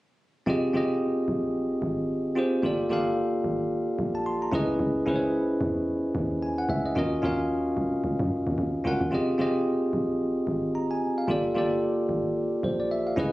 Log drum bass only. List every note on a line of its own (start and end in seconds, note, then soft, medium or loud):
0.47 0.72 F1 loud
0.74 1.24 F1 loud
1.28 1.68 A#1 loud
1.82 2.38 G#1 loud
2.36 2.61 F1 medium
2.63 2.88 G1 loud
2.90 3.41 G1 loud
3.44 3.84 G#1 medium
3.99 4.49 A#1 medium
4.53 4.78 C#2 loud
4.79 5.05 C#2 loud
5.07 5.57 C#2 loud
5.61 6.00 E2 loud
6.15 6.65 D#2 loud
6.69 6.94 C#2 loud
6.96 7.21 D#2 loud
7.23 7.73 D#2 loud
7.77 8.02 C2 loud
8.04 8.18 C#2 medium
8.20 8.30 F#2 medium
8.47 8.57 D#2 medium
8.58 8.73 D#2 loud
8.85 9.00 C#2 medium
9.01 9.11 D#2 medium
9.12 9.37 F1 loud
9.39 9.89 F1 loud
9.93 10.33 A#1 loud
10.47 11.03 G#1 loud
11.01 11.26 F1 medium
11.28 11.53 G1 loud
11.55 12.05 G1 medium
12.09 12.49 G#1 medium
12.63 13.14 A#1 medium
13.17 13.32 C#2 loud